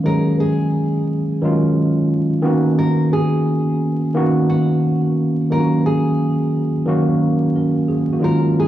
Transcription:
Already playing: D#3 F#3 G#3 C#4 F5
0.04 D#3 F#3 G#3 C#4 G#4 A#4
0.40 G#4
1.42 D#3 F#3 G#3 C#4 F4
2.42 D#3 A#3 B3 C#4 F#4
2.79 A#4
3.13 G#4
4.14 D#3 A#3 B3 C#4 F#4
4.50 F#4
5.50 D#3 F#3 A#3 C#4 F4 A#4
5.60 F#4
5.86 G#4
6.86 D#3 F#3 A#3 C#4 F#4
7.56 C#4 A#4
7.88 G#4
8.13 A#3 F#4
8.20 D#3 F#3 G#3 C#4 F4
8.24 A#4
8.60 G#4

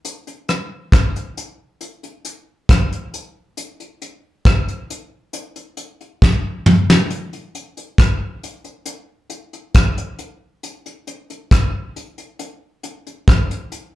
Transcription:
0.05 closed hi-hat
0.27 closed hi-hat
0.48 cross-stick, closed hi-hat
0.92 kick, cross-stick, closed hi-hat
1.16 closed hi-hat
1.37 closed hi-hat
1.81 closed hi-hat
2.03 closed hi-hat
2.25 closed hi-hat
2.69 kick, cross-stick, closed hi-hat
2.92 closed hi-hat
3.14 closed hi-hat
3.57 closed hi-hat
3.80 closed hi-hat
4.02 closed hi-hat
4.45 kick, cross-stick, closed hi-hat
4.68 closed hi-hat
4.90 closed hi-hat
5.33 closed hi-hat
5.56 closed hi-hat
5.77 closed hi-hat
6.01 closed hi-hat
6.22 kick, snare
6.66 mid tom
6.90 snare
7.10 closed hi-hat
7.33 closed hi-hat
7.55 closed hi-hat
7.77 closed hi-hat
7.98 kick, cross-stick, closed hi-hat
8.43 closed hi-hat
8.64 closed hi-hat
8.86 closed hi-hat
9.30 closed hi-hat
9.53 closed hi-hat
9.74 kick, cross-stick, closed hi-hat
9.97 closed hi-hat
10.19 closed hi-hat
10.63 closed hi-hat
10.86 closed hi-hat
11.07 closed hi-hat
11.30 closed hi-hat
11.51 kick, cross-stick, closed hi-hat
11.96 closed hi-hat
12.18 closed hi-hat
12.39 closed hi-hat
12.83 closed hi-hat
13.07 closed hi-hat
13.28 kick, cross-stick, closed hi-hat
13.51 closed hi-hat
13.72 closed hi-hat

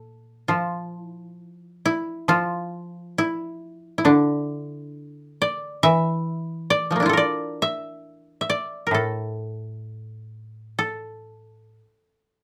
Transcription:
Already playing: A#2 D4 E4 F4 A4
0.48 F3 F4
0.99 E4
1.85 E4
2.28 F3 F4
3.18 E4
3.98 E4
4.05 D3 D4
5.42 D5
5.83 E3 E5
6.70 D5
6.91 F3 A3
6.96 A#3
7.00 D4 E4
7.06 F4 A4
7.13 A#4
7.17 D5
7.62 E5
8.41 E5
8.50 D5
8.87 A#4
8.91 A2 A4
10.79 A4

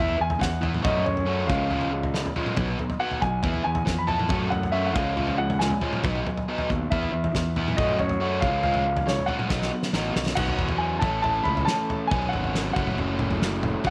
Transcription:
Already playing: E2 E3 B3 E4
0.00 E5
0.08 floor tom
0.17 E2 E3 B3 G#5
0.30 floor tom
0.39 E2 E3 B3 F#5, kick, snare
0.61 E3 B3 E4, floor tom
0.74 mid tom
0.82 F#2 A3 C#4 F#4 D#5, kick, floor tom, mid tom
0.96 mid tom
1.04 A3 C#4 C#5, floor tom
1.17 floor tom
1.25 A3 C#4 F#4
1.47 C#2 F3 G#3 C#4 F5, kick
1.69 F3 G#3 C#4, floor tom
1.81 floor tom
1.92 F3 G#3
2.03 floor tom
2.14 F3 G#3, snare
2.26 floor tom
2.36 F3 G#3 C#4, floor tom
2.46 mid tom
2.56 B1 F#3 B3 D#4, kick, floor tom, mid tom
2.68 mid tom
2.79 F#3 B3, floor tom
2.90 floor tom
2.99 F#3 B3 D#4 F#5
3.11 floor tom
3.21 B1 F#3 B3 G#5, kick
3.43 E2 E3 B3 E4, kick, floor tom
3.54 floor tom
3.64 E2 E3 B3 G#5
3.75 floor tom
3.86 F2 E3 B3, kick, snare
3.98 B5
4.07 E3 B3 E4 A5, floor tom
4.19 mid tom
4.29 F#2 A3 C#4 F#4, kick, floor tom, mid tom
4.41 mid tom
4.50 A3 C#4 F#5, floor tom
4.63 floor tom
4.72 A3 C#4 F#4 E5
4.86 F#5
4.93 C#2 F3 G#3 C#4 F5, kick
5.16 F3 G#3 C#4, floor tom
5.27 floor tom
5.38 F3 G#3 F#5
5.50 floor tom
5.59 F3 G#3 G#5, snare
5.70 floor tom
5.81 F3 G#3 C#4, floor tom
5.93 mid tom
6.04 B1 F#3 B3 D#4, kick, floor tom, mid tom
6.15 mid tom
6.26 F#3 B3, floor tom
6.37 floor tom
6.48 F#3 B3 D#4
6.58 floor tom
6.70 D#2 F#3 B3, kick
6.90 E2 E3 B3 E4 E5, kick, floor tom
7.03 floor tom
7.12 E2 E3 B3
7.24 floor tom
7.35 E2 E3 B3, kick, snare
7.56 E3 B3 E4, floor tom
7.68 mid tom
7.77 F#2 A3 C#4 F#4 D#5, kick, floor tom, mid tom
7.89 mid tom
7.99 A3 C#4 C#5, floor tom
8.09 floor tom
8.20 A3 C#4 F#4
8.40 C#2 F3 G#3 C#4 F5, kick
8.63 F3 G#3 C#4 F5, floor tom
8.74 floor tom
8.85 F3 G#3
8.97 floor tom
9.06 F3 G#3 C#5, snare
9.19 floor tom
9.26 F3 G#3 C#4 F#5, floor tom
9.39 mid tom
9.48 B1 F#3 B3 D#4, kick, snare
9.62 snare
9.72 F#3 B3
9.83 snare
9.93 A1 F#3 B3 D#4, snare
10.15 B1 F#3 B3, snare
10.26 snare
10.35 B1 F#3 B3 C#4 F#5, kick, floor tom, crash
10.48 floor tom
10.58 E2, kick, floor tom
10.69 floor tom
10.78 G#5
10.99 A1 E3 A3 A5, kick, mid tom
11.04 C#4
11.22 A5, floor tom
11.44 C#2 B5, floor tom
11.57 floor tom
11.65 A5, snare
11.90 floor tom
12.07 F#3 G#5, floor tom
12.11 B1 B3 C#4, kick
12.22 floor tom
12.29 F#5
12.33 G#1, floor tom
12.44 floor tom
12.55 snare
12.73 F#1 F#3 A3 F#5, kick
12.77 C#4
12.87 mid tom
12.98 F#1, floor tom
13.19 floor tom, mid tom
13.31 floor tom
13.42 snare
13.63 floor tom, mid tom
13.84 B1 F#3 B3 C#4 F#5, kick, floor tom

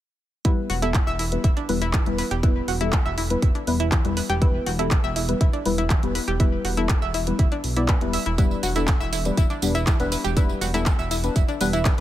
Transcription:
0.45 G3 B3 E4 B4, kick, closed hi-hat
0.70 E1 F#4, open hi-hat
0.82 G3 B3 E4 A4, closed hi-hat
0.94 kick, clap, closed hi-hat
1.07 E1 E5
1.19 E4, open hi-hat
1.32 G3 B3 E4 B4, closed hi-hat
1.44 E1 E4, kick, closed hi-hat
1.57 D4, closed hi-hat
1.69 E1 G3 B3 E4 B4, open hi-hat
1.82 E4, closed hi-hat
1.93 E3, kick, clap, closed hi-hat
2.06 E1 G3 B3 E4 B4, closed hi-hat
2.18 B4, open hi-hat
2.31 E1 G4, closed hi-hat
2.43 G3 B3 E4 B4, kick, closed hi-hat
2.68 E1 F#4, open hi-hat
2.81 G3 B3 E4 A4, closed hi-hat
2.93 kick, clap, closed hi-hat
3.06 E1 E5
3.18 E4, open hi-hat
3.30 G3 B3 E4 B4, closed hi-hat
3.42 E1 E4, kick, closed hi-hat
3.55 D4, closed hi-hat
3.67 E1 G3 B3 E4 B4, open hi-hat
3.80 E4, closed hi-hat
3.92 E3, kick, clap, closed hi-hat
4.05 E1 G3 B3 E4 B4, closed hi-hat
4.17 B4, open hi-hat
4.29 E1 G4, closed hi-hat
4.42 G3 B3 E4 B4, kick, closed hi-hat
4.66 E1 F#4, open hi-hat
4.79 G3 B3 E4 A4, closed hi-hat
4.91 kick, clap, closed hi-hat
5.04 E1 E5
5.16 E4, open hi-hat
5.29 G3 B3 E4 B4, closed hi-hat
5.41 E1 E4, kick, closed hi-hat
5.53 D4, closed hi-hat
5.66 E1 G3 B3 E4 B4, open hi-hat
5.78 E4, closed hi-hat
5.90 E3, kick, clap, closed hi-hat
6.03 E1 G3 B3 E4 B4, closed hi-hat
6.15 B4, open hi-hat
6.28 E1 G4, closed hi-hat
6.40 G3 B3 E4 B4, kick, closed hi-hat
6.65 E1 F#4, open hi-hat
6.77 G3 B3 E4 A4, closed hi-hat
6.89 kick, clap, closed hi-hat
7.02 E1 E5
7.14 E4, open hi-hat
7.27 G3 B3 E4 B4, closed hi-hat
7.39 D1 E4, kick, closed hi-hat
7.52 D4, closed hi-hat
7.64 B1, open hi-hat
7.76 G3 B3 E4 D5, closed hi-hat
7.88 B4, kick, clap, closed hi-hat
8.01 E1 G3 B3 E4 B4, closed hi-hat
8.13 E5, open hi-hat
8.26 E1 E4, closed hi-hat
8.38 G3 B3 D4 E4 B4, kick, closed hi-hat, tambourine
8.51 tambourine
8.63 E1 F#4, closed hi-hat, open hi-hat, tambourine
8.76 G3 B3 D4 E4 A4, closed hi-hat, tambourine
8.88 kick, snare, clap, closed hi-hat, tambourine
9.00 E1 E5, tambourine
9.13 E4, closed hi-hat, open hi-hat, tambourine
9.25 G3 B3 D4 B4, closed hi-hat, tambourine
9.37 E1 E4, kick, closed hi-hat, tambourine
9.50 D4, closed hi-hat, tambourine
9.62 E1 G3 B3 D4 B4, closed hi-hat, open hi-hat, tambourine
9.75 E4, closed hi-hat, tambourine
9.87 E3, kick, snare, clap, closed hi-hat, tambourine
10.00 E1 G3 B3 D4 B4, snare, closed hi-hat, tambourine
10.12 B4, closed hi-hat, open hi-hat, tambourine
10.24 E1 G4, closed hi-hat, tambourine
10.37 G3 B3 D4 E4 B4, kick, closed hi-hat, tambourine
10.49 tambourine
10.61 E1 F#4, closed hi-hat, open hi-hat, tambourine
10.74 G3 B3 D4 E4 A4, snare, closed hi-hat, tambourine
10.86 kick, snare, clap, closed hi-hat, tambourine
10.99 E1 E5, tambourine
11.11 E4, open hi-hat, tambourine
11.24 G3 B3 D4 B4, closed hi-hat, tambourine
11.36 E1 E4, kick, closed hi-hat, tambourine
11.48 D4, closed hi-hat, tambourine
11.61 E1 G3 B3 D4 B4, closed hi-hat, open hi-hat, tambourine
11.73 E4, closed hi-hat, tambourine
11.85 E3, kick, snare, clap, closed hi-hat, tambourine

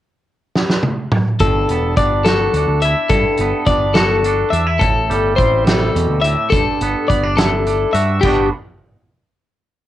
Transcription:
0.56 snare
0.70 snare
0.83 high tom
1.12 mid tom
1.39 G1 G2 A4, kick, closed hi-hat
1.68 E1 B3, closed hi-hat
1.97 G1 D4 D5, kick, closed hi-hat
2.25 F#4 A4, snare, closed hi-hat
2.53 D2 D4, closed hi-hat
2.68 D2
2.81 E4 E5, closed hi-hat
3.09 G2 A4, kick, closed hi-hat
3.37 G1 B3, closed hi-hat
3.66 G1 D4 D5, kick, closed hi-hat
3.94 F#4 A4, snare, closed hi-hat
4.24 D4, closed hi-hat
4.50 E2 D4 E5, closed hi-hat
4.67 E4
4.79 A1 A2 A4, kick, closed hi-hat
5.10 G1 G3, closed hi-hat
5.36 A1 C4 C5, kick, closed hi-hat
5.65 C3 A4, snare, closed hi-hat
5.95 E2 B2, closed hi-hat
6.09 D2
6.21 A2 E5, closed hi-hat
6.50 G1 G2 A4, kick, closed hi-hat
6.81 G1 B3, closed hi-hat
7.08 G1 B3 D5, kick, closed hi-hat
7.23 D4
7.37 E4 A4, snare, closed hi-hat
7.66 D4, closed hi-hat
7.93 G2 F#4 E5, closed hi-hat
8.21 G1 G2 D3 B3 G4, kick, crash
8.26 D4 F#4

